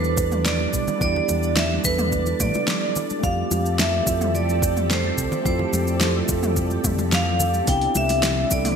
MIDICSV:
0, 0, Header, 1, 6, 480
1, 0, Start_track
1, 0, Tempo, 555556
1, 874, Time_signature, 4, 2, 24, 8
1, 7567, End_track
2, 0, Start_track
2, 0, Title_t, "Vibraphone"
2, 0, Program_c, 0, 11
2, 0, Note_on_c, 0, 71, 83
2, 365, Note_off_c, 0, 71, 0
2, 391, Note_on_c, 0, 74, 87
2, 869, Note_off_c, 0, 74, 0
2, 879, Note_on_c, 0, 74, 100
2, 1358, Note_on_c, 0, 76, 99
2, 1371, Note_off_c, 0, 74, 0
2, 1465, Note_off_c, 0, 76, 0
2, 1599, Note_on_c, 0, 71, 93
2, 2080, Note_on_c, 0, 74, 88
2, 2091, Note_off_c, 0, 71, 0
2, 2796, Note_on_c, 0, 77, 102
2, 2819, Note_off_c, 0, 74, 0
2, 3242, Note_off_c, 0, 77, 0
2, 3278, Note_on_c, 0, 76, 102
2, 3723, Note_off_c, 0, 76, 0
2, 3757, Note_on_c, 0, 74, 92
2, 4239, Note_on_c, 0, 72, 87
2, 4250, Note_off_c, 0, 74, 0
2, 4684, Note_off_c, 0, 72, 0
2, 4716, Note_on_c, 0, 72, 83
2, 5401, Note_off_c, 0, 72, 0
2, 6169, Note_on_c, 0, 77, 96
2, 6643, Note_on_c, 0, 79, 102
2, 6656, Note_off_c, 0, 77, 0
2, 6862, Note_off_c, 0, 79, 0
2, 6887, Note_on_c, 0, 76, 89
2, 7327, Note_off_c, 0, 76, 0
2, 7361, Note_on_c, 0, 74, 94
2, 7441, Note_off_c, 0, 74, 0
2, 7537, Note_on_c, 0, 74, 67
2, 7567, Note_off_c, 0, 74, 0
2, 7567, End_track
3, 0, Start_track
3, 0, Title_t, "String machine"
3, 0, Program_c, 1, 50
3, 0, Note_on_c, 1, 55, 74
3, 0, Note_on_c, 1, 62, 70
3, 0, Note_on_c, 1, 74, 73
3, 2756, Note_off_c, 1, 55, 0
3, 2758, Note_off_c, 1, 62, 0
3, 2792, Note_on_c, 1, 67, 67
3, 2794, Note_on_c, 1, 60, 74
3, 2795, Note_on_c, 1, 53, 78
3, 2797, Note_on_c, 1, 69, 84
3, 6599, Note_off_c, 1, 67, 0
3, 6600, Note_off_c, 1, 53, 0
3, 6600, Note_off_c, 1, 60, 0
3, 6601, Note_off_c, 1, 69, 0
3, 6603, Note_off_c, 1, 74, 0
3, 6624, Note_on_c, 1, 55, 70
3, 6624, Note_on_c, 1, 74, 69
3, 6626, Note_on_c, 1, 62, 69
3, 6627, Note_on_c, 1, 76, 86
3, 6628, Note_on_c, 1, 48, 76
3, 7567, Note_off_c, 1, 48, 0
3, 7567, Note_off_c, 1, 55, 0
3, 7567, Note_off_c, 1, 62, 0
3, 7567, Note_off_c, 1, 74, 0
3, 7567, Note_off_c, 1, 76, 0
3, 7567, End_track
4, 0, Start_track
4, 0, Title_t, "Tine electric piano"
4, 0, Program_c, 2, 4
4, 0, Control_c, 2, 64, 127
4, 0, Note_on_c, 2, 55, 69
4, 0, Note_on_c, 2, 59, 68
4, 0, Note_on_c, 2, 62, 68
4, 0, Note_on_c, 2, 64, 67
4, 0, Note_on_c, 2, 67, 89
4, 0, Note_on_c, 2, 69, 76
4, 824, Note_off_c, 2, 55, 0
4, 833, Note_off_c, 2, 59, 0
4, 839, Note_on_c, 2, 55, 80
4, 841, Note_off_c, 2, 62, 0
4, 850, Note_off_c, 2, 64, 0
4, 853, Note_on_c, 2, 59, 77
4, 857, Note_off_c, 2, 69, 0
4, 871, Note_on_c, 2, 62, 72
4, 885, Note_on_c, 2, 64, 71
4, 900, Note_off_c, 2, 67, 0
4, 900, Note_on_c, 2, 67, 86
4, 1549, Note_off_c, 2, 55, 0
4, 1555, Note_off_c, 2, 59, 0
4, 1562, Note_on_c, 2, 55, 71
4, 1564, Note_off_c, 2, 62, 0
4, 1572, Note_off_c, 2, 64, 0
4, 1579, Note_off_c, 2, 67, 0
4, 1581, Note_on_c, 2, 59, 67
4, 1593, Note_on_c, 2, 62, 66
4, 1611, Note_on_c, 2, 64, 71
4, 1626, Note_on_c, 2, 69, 80
4, 2750, Note_off_c, 2, 55, 0
4, 2757, Note_on_c, 2, 57, 84
4, 2760, Note_off_c, 2, 59, 0
4, 2765, Note_off_c, 2, 62, 0
4, 2771, Note_on_c, 2, 60, 75
4, 2774, Note_off_c, 2, 64, 0
4, 2782, Note_off_c, 2, 69, 0
4, 2806, Control_c, 2, 64, 0
4, 2809, Note_on_c, 2, 65, 75
4, 2824, Note_on_c, 2, 67, 88
4, 2978, Control_c, 2, 64, 127
4, 3468, Note_off_c, 2, 57, 0
4, 3475, Note_off_c, 2, 60, 0
4, 3478, Note_on_c, 2, 57, 76
4, 3493, Note_on_c, 2, 60, 69
4, 3494, Note_off_c, 2, 65, 0
4, 3501, Note_off_c, 2, 67, 0
4, 3512, Note_on_c, 2, 64, 68
4, 3529, Note_on_c, 2, 65, 65
4, 3544, Note_on_c, 2, 69, 84
4, 4668, Note_off_c, 2, 57, 0
4, 4676, Note_off_c, 2, 60, 0
4, 4678, Note_on_c, 2, 57, 79
4, 4685, Note_off_c, 2, 64, 0
4, 4694, Note_off_c, 2, 65, 0
4, 4697, Note_on_c, 2, 60, 75
4, 4701, Note_off_c, 2, 69, 0
4, 4712, Note_on_c, 2, 64, 76
4, 4732, Note_on_c, 2, 65, 78
4, 4742, Note_on_c, 2, 67, 85
4, 5388, Note_off_c, 2, 57, 0
4, 5397, Note_off_c, 2, 60, 0
4, 5399, Note_on_c, 2, 57, 73
4, 5405, Note_off_c, 2, 64, 0
4, 5414, Note_on_c, 2, 60, 67
4, 5415, Note_off_c, 2, 65, 0
4, 5420, Note_off_c, 2, 67, 0
4, 5432, Note_on_c, 2, 67, 65
4, 5448, Note_on_c, 2, 65, 68
4, 5465, Note_on_c, 2, 69, 77
4, 6589, Note_off_c, 2, 57, 0
4, 6596, Note_off_c, 2, 60, 0
4, 6599, Note_on_c, 2, 59, 79
4, 6605, Note_off_c, 2, 67, 0
4, 6613, Note_off_c, 2, 65, 0
4, 6615, Note_on_c, 2, 60, 78
4, 6621, Note_off_c, 2, 69, 0
4, 6630, Note_on_c, 2, 62, 76
4, 6644, Note_on_c, 2, 64, 74
4, 6647, Control_c, 2, 64, 0
4, 6664, Note_on_c, 2, 67, 88
4, 6794, Control_c, 2, 64, 127
4, 7308, Note_off_c, 2, 59, 0
4, 7314, Note_on_c, 2, 55, 76
4, 7316, Note_off_c, 2, 60, 0
4, 7324, Note_off_c, 2, 62, 0
4, 7331, Note_off_c, 2, 64, 0
4, 7332, Note_on_c, 2, 60, 68
4, 7341, Note_off_c, 2, 67, 0
4, 7346, Note_on_c, 2, 62, 68
4, 7362, Note_on_c, 2, 64, 66
4, 7381, Note_on_c, 2, 69, 79
4, 7567, Note_off_c, 2, 55, 0
4, 7567, Note_off_c, 2, 60, 0
4, 7567, Note_off_c, 2, 62, 0
4, 7567, Note_off_c, 2, 64, 0
4, 7567, Note_off_c, 2, 69, 0
4, 7567, End_track
5, 0, Start_track
5, 0, Title_t, "Fingered electric bass"
5, 0, Program_c, 3, 33
5, 0, Note_on_c, 3, 40, 94
5, 565, Note_off_c, 3, 40, 0
5, 635, Note_on_c, 3, 35, 76
5, 713, Note_off_c, 3, 35, 0
5, 872, Note_on_c, 3, 40, 97
5, 1029, Note_off_c, 3, 40, 0
5, 1124, Note_on_c, 3, 40, 96
5, 1532, Note_off_c, 3, 40, 0
5, 1594, Note_on_c, 3, 40, 97
5, 2007, Note_off_c, 3, 40, 0
5, 2075, Note_on_c, 3, 45, 84
5, 2154, Note_off_c, 3, 45, 0
5, 2794, Note_on_c, 3, 41, 93
5, 2950, Note_off_c, 3, 41, 0
5, 3037, Note_on_c, 3, 41, 99
5, 3449, Note_off_c, 3, 41, 0
5, 3514, Note_on_c, 3, 41, 97
5, 4407, Note_off_c, 3, 41, 0
5, 4473, Note_on_c, 3, 36, 76
5, 4552, Note_off_c, 3, 36, 0
5, 4713, Note_on_c, 3, 41, 95
5, 4870, Note_off_c, 3, 41, 0
5, 4948, Note_on_c, 3, 41, 98
5, 5364, Note_off_c, 3, 41, 0
5, 5433, Note_on_c, 3, 41, 96
5, 5847, Note_off_c, 3, 41, 0
5, 5910, Note_on_c, 3, 41, 86
5, 6565, Note_off_c, 3, 41, 0
5, 6633, Note_on_c, 3, 36, 98
5, 6790, Note_off_c, 3, 36, 0
5, 6875, Note_on_c, 3, 36, 101
5, 7288, Note_off_c, 3, 36, 0
5, 7357, Note_on_c, 3, 36, 95
5, 7567, Note_off_c, 3, 36, 0
5, 7567, End_track
6, 0, Start_track
6, 0, Title_t, "Drums"
6, 36, Note_on_c, 9, 82, 29
6, 122, Note_off_c, 9, 82, 0
6, 149, Note_on_c, 9, 82, 72
6, 151, Note_on_c, 9, 36, 100
6, 235, Note_off_c, 9, 82, 0
6, 237, Note_off_c, 9, 36, 0
6, 275, Note_on_c, 9, 45, 54
6, 275, Note_on_c, 9, 82, 31
6, 361, Note_off_c, 9, 45, 0
6, 361, Note_off_c, 9, 82, 0
6, 393, Note_on_c, 9, 38, 101
6, 394, Note_on_c, 9, 82, 42
6, 480, Note_off_c, 9, 38, 0
6, 480, Note_off_c, 9, 82, 0
6, 515, Note_on_c, 9, 63, 60
6, 602, Note_off_c, 9, 63, 0
6, 633, Note_on_c, 9, 36, 62
6, 634, Note_on_c, 9, 82, 79
6, 720, Note_off_c, 9, 36, 0
6, 720, Note_off_c, 9, 82, 0
6, 757, Note_on_c, 9, 82, 33
6, 759, Note_on_c, 9, 64, 85
6, 844, Note_off_c, 9, 82, 0
6, 845, Note_off_c, 9, 64, 0
6, 874, Note_on_c, 9, 36, 119
6, 875, Note_on_c, 9, 82, 46
6, 960, Note_off_c, 9, 36, 0
6, 961, Note_off_c, 9, 82, 0
6, 1004, Note_on_c, 9, 64, 67
6, 1091, Note_off_c, 9, 64, 0
6, 1111, Note_on_c, 9, 82, 74
6, 1112, Note_on_c, 9, 63, 83
6, 1198, Note_off_c, 9, 63, 0
6, 1198, Note_off_c, 9, 82, 0
6, 1235, Note_on_c, 9, 82, 33
6, 1322, Note_off_c, 9, 82, 0
6, 1352, Note_on_c, 9, 38, 104
6, 1353, Note_on_c, 9, 82, 45
6, 1439, Note_off_c, 9, 38, 0
6, 1439, Note_off_c, 9, 82, 0
6, 1592, Note_on_c, 9, 82, 81
6, 1595, Note_on_c, 9, 36, 102
6, 1678, Note_off_c, 9, 82, 0
6, 1681, Note_off_c, 9, 36, 0
6, 1716, Note_on_c, 9, 45, 71
6, 1716, Note_on_c, 9, 82, 33
6, 1802, Note_off_c, 9, 45, 0
6, 1803, Note_off_c, 9, 82, 0
6, 1832, Note_on_c, 9, 82, 46
6, 1834, Note_on_c, 9, 36, 63
6, 1919, Note_off_c, 9, 82, 0
6, 1921, Note_off_c, 9, 36, 0
6, 1954, Note_on_c, 9, 82, 31
6, 1961, Note_on_c, 9, 63, 59
6, 2041, Note_off_c, 9, 82, 0
6, 2047, Note_off_c, 9, 63, 0
6, 2073, Note_on_c, 9, 45, 75
6, 2073, Note_on_c, 9, 82, 76
6, 2074, Note_on_c, 9, 36, 102
6, 2159, Note_off_c, 9, 45, 0
6, 2159, Note_off_c, 9, 82, 0
6, 2161, Note_off_c, 9, 36, 0
6, 2196, Note_on_c, 9, 82, 31
6, 2207, Note_on_c, 9, 63, 86
6, 2282, Note_off_c, 9, 82, 0
6, 2293, Note_off_c, 9, 63, 0
6, 2313, Note_on_c, 9, 38, 106
6, 2313, Note_on_c, 9, 82, 45
6, 2399, Note_off_c, 9, 38, 0
6, 2400, Note_off_c, 9, 82, 0
6, 2555, Note_on_c, 9, 82, 77
6, 2560, Note_on_c, 9, 64, 74
6, 2641, Note_off_c, 9, 82, 0
6, 2647, Note_off_c, 9, 64, 0
6, 2678, Note_on_c, 9, 82, 32
6, 2689, Note_on_c, 9, 63, 59
6, 2765, Note_off_c, 9, 82, 0
6, 2775, Note_off_c, 9, 63, 0
6, 2794, Note_on_c, 9, 82, 47
6, 2795, Note_on_c, 9, 36, 125
6, 2880, Note_off_c, 9, 82, 0
6, 2882, Note_off_c, 9, 36, 0
6, 3034, Note_on_c, 9, 82, 69
6, 3036, Note_on_c, 9, 63, 95
6, 3120, Note_off_c, 9, 82, 0
6, 3122, Note_off_c, 9, 63, 0
6, 3159, Note_on_c, 9, 82, 34
6, 3246, Note_off_c, 9, 82, 0
6, 3277, Note_on_c, 9, 38, 97
6, 3277, Note_on_c, 9, 82, 45
6, 3363, Note_off_c, 9, 38, 0
6, 3364, Note_off_c, 9, 82, 0
6, 3514, Note_on_c, 9, 36, 100
6, 3516, Note_on_c, 9, 82, 76
6, 3601, Note_off_c, 9, 36, 0
6, 3602, Note_off_c, 9, 82, 0
6, 3639, Note_on_c, 9, 45, 67
6, 3639, Note_on_c, 9, 82, 35
6, 3725, Note_off_c, 9, 45, 0
6, 3725, Note_off_c, 9, 82, 0
6, 3757, Note_on_c, 9, 82, 48
6, 3844, Note_off_c, 9, 82, 0
6, 3882, Note_on_c, 9, 82, 31
6, 3969, Note_off_c, 9, 82, 0
6, 3994, Note_on_c, 9, 36, 102
6, 3999, Note_on_c, 9, 82, 79
6, 4080, Note_off_c, 9, 36, 0
6, 4085, Note_off_c, 9, 82, 0
6, 4119, Note_on_c, 9, 45, 49
6, 4119, Note_on_c, 9, 82, 30
6, 4205, Note_off_c, 9, 45, 0
6, 4206, Note_off_c, 9, 82, 0
6, 4239, Note_on_c, 9, 38, 96
6, 4239, Note_on_c, 9, 82, 43
6, 4325, Note_off_c, 9, 38, 0
6, 4326, Note_off_c, 9, 82, 0
6, 4355, Note_on_c, 9, 63, 68
6, 4441, Note_off_c, 9, 63, 0
6, 4474, Note_on_c, 9, 36, 62
6, 4475, Note_on_c, 9, 82, 81
6, 4560, Note_off_c, 9, 36, 0
6, 4561, Note_off_c, 9, 82, 0
6, 4595, Note_on_c, 9, 64, 94
6, 4599, Note_on_c, 9, 82, 33
6, 4682, Note_off_c, 9, 64, 0
6, 4685, Note_off_c, 9, 82, 0
6, 4713, Note_on_c, 9, 36, 122
6, 4716, Note_on_c, 9, 82, 46
6, 4800, Note_off_c, 9, 36, 0
6, 4802, Note_off_c, 9, 82, 0
6, 4832, Note_on_c, 9, 64, 72
6, 4919, Note_off_c, 9, 64, 0
6, 4952, Note_on_c, 9, 82, 67
6, 4955, Note_on_c, 9, 63, 95
6, 5039, Note_off_c, 9, 82, 0
6, 5041, Note_off_c, 9, 63, 0
6, 5076, Note_on_c, 9, 82, 31
6, 5162, Note_off_c, 9, 82, 0
6, 5189, Note_on_c, 9, 38, 88
6, 5190, Note_on_c, 9, 82, 44
6, 5276, Note_off_c, 9, 38, 0
6, 5276, Note_off_c, 9, 82, 0
6, 5429, Note_on_c, 9, 82, 74
6, 5434, Note_on_c, 9, 36, 101
6, 5516, Note_off_c, 9, 82, 0
6, 5520, Note_off_c, 9, 36, 0
6, 5555, Note_on_c, 9, 45, 69
6, 5556, Note_on_c, 9, 82, 32
6, 5642, Note_off_c, 9, 45, 0
6, 5642, Note_off_c, 9, 82, 0
6, 5671, Note_on_c, 9, 82, 46
6, 5673, Note_on_c, 9, 36, 58
6, 5757, Note_off_c, 9, 82, 0
6, 5759, Note_off_c, 9, 36, 0
6, 5794, Note_on_c, 9, 82, 30
6, 5801, Note_on_c, 9, 63, 63
6, 5880, Note_off_c, 9, 82, 0
6, 5887, Note_off_c, 9, 63, 0
6, 5911, Note_on_c, 9, 45, 69
6, 5912, Note_on_c, 9, 82, 74
6, 5913, Note_on_c, 9, 36, 100
6, 5998, Note_off_c, 9, 45, 0
6, 5998, Note_off_c, 9, 82, 0
6, 6000, Note_off_c, 9, 36, 0
6, 6036, Note_on_c, 9, 82, 32
6, 6037, Note_on_c, 9, 63, 92
6, 6123, Note_off_c, 9, 63, 0
6, 6123, Note_off_c, 9, 82, 0
6, 6154, Note_on_c, 9, 38, 95
6, 6155, Note_on_c, 9, 82, 46
6, 6240, Note_off_c, 9, 38, 0
6, 6241, Note_off_c, 9, 82, 0
6, 6392, Note_on_c, 9, 82, 79
6, 6394, Note_on_c, 9, 64, 75
6, 6479, Note_off_c, 9, 82, 0
6, 6480, Note_off_c, 9, 64, 0
6, 6513, Note_on_c, 9, 82, 34
6, 6514, Note_on_c, 9, 63, 68
6, 6600, Note_off_c, 9, 63, 0
6, 6600, Note_off_c, 9, 82, 0
6, 6630, Note_on_c, 9, 46, 52
6, 6630, Note_on_c, 9, 82, 43
6, 6633, Note_on_c, 9, 36, 115
6, 6634, Note_on_c, 9, 62, 45
6, 6716, Note_off_c, 9, 46, 0
6, 6716, Note_off_c, 9, 82, 0
6, 6720, Note_off_c, 9, 36, 0
6, 6720, Note_off_c, 9, 62, 0
6, 6752, Note_on_c, 9, 46, 28
6, 6838, Note_off_c, 9, 46, 0
6, 6869, Note_on_c, 9, 82, 71
6, 6871, Note_on_c, 9, 63, 97
6, 6955, Note_off_c, 9, 82, 0
6, 6958, Note_off_c, 9, 63, 0
6, 6992, Note_on_c, 9, 46, 40
6, 6992, Note_on_c, 9, 82, 34
6, 7000, Note_on_c, 9, 62, 72
6, 7078, Note_off_c, 9, 46, 0
6, 7079, Note_off_c, 9, 82, 0
6, 7086, Note_off_c, 9, 62, 0
6, 7111, Note_on_c, 9, 38, 93
6, 7111, Note_on_c, 9, 46, 49
6, 7111, Note_on_c, 9, 82, 43
6, 7197, Note_off_c, 9, 38, 0
6, 7197, Note_off_c, 9, 46, 0
6, 7198, Note_off_c, 9, 82, 0
6, 7350, Note_on_c, 9, 82, 78
6, 7354, Note_on_c, 9, 36, 100
6, 7436, Note_off_c, 9, 82, 0
6, 7441, Note_off_c, 9, 36, 0
6, 7473, Note_on_c, 9, 45, 74
6, 7473, Note_on_c, 9, 46, 42
6, 7474, Note_on_c, 9, 82, 32
6, 7477, Note_on_c, 9, 62, 54
6, 7559, Note_off_c, 9, 45, 0
6, 7559, Note_off_c, 9, 46, 0
6, 7560, Note_off_c, 9, 82, 0
6, 7563, Note_off_c, 9, 62, 0
6, 7567, End_track
0, 0, End_of_file